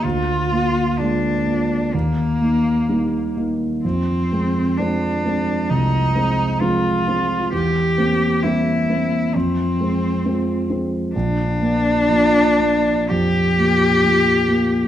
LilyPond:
<<
  \new Staff \with { instrumentName = "Cello" } { \time 4/4 \key bes \mixolydian \tempo 4 = 65 f'4 d'4 bes4. r8 | c'4 d'4 ees'4 f'4 | g'4 e'4 c'4. r8 | d'2 g'2 | }
  \new Staff \with { instrumentName = "Grand piano" } { \time 4/4 \key bes \mixolydian d,8 <bes f'>8 <aes bes f'>8 <bes f'>8 ees,8 <bes ees'>8 <g bes ees'>8 <bes ees'>8 | f,8 <aes c'>8 <f aes c'>8 <aes c'>8 c,8 <aes c'>8 <f aes c'>8 <aes c'>8 | e,8 <bes c'>8 <g bes c'>8 <bes c'>8 f,8 <aes c'>8 <f aes c'>8 <aes c'>8 | bes,,8 bes8 <f bes>8 bes8 f,8 bes8 <f bes>8 bes8 | }
>>